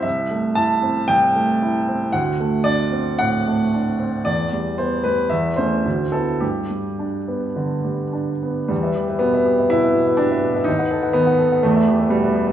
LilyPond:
\new Staff \with { instrumentName = "Grand piano" } { \time 4/4 \key g \major \tempo 4 = 115 << { e''4 a''4 g''2 | fis''4 d''4 fis''2 | d''4 c''8 b'8 e''8 c''4 a'8 | g'2. r4 |
\key e \minor g4 b4 e'4 d'4 | dis'4 b4 a4 g4 | } \\ { c,8 a8 e'8 c'8 c,8 a8 e'8 c'8 | d,8 a8 d'8 c'8 a,8 a8 d'8 c'8 | e,8 g8 b8 g8 e,8 <a cis'>8 d,8 <b e'>8 | g,8 g8 d'8 b8 d8 g8 d'8 b8 |
e,16 <b' e''>16 g'16 <b' e''>16 b,16 <b' e''>16 g'16 <b' e''>16 b,16 <b' e''>16 b,16 <b' e''>16 g'16 <b' e''>16 b,16 <b' e''>16 | dis,16 <b' fis''>16 a'16 <b' fis''>16 dis16 <b' fis''>16 a'16 <b' fis''>16 e,16 <b' e''>16 g'16 <b' e''>16 b,16 <b' e''>16 g'16 <b' e''>16 | } >> }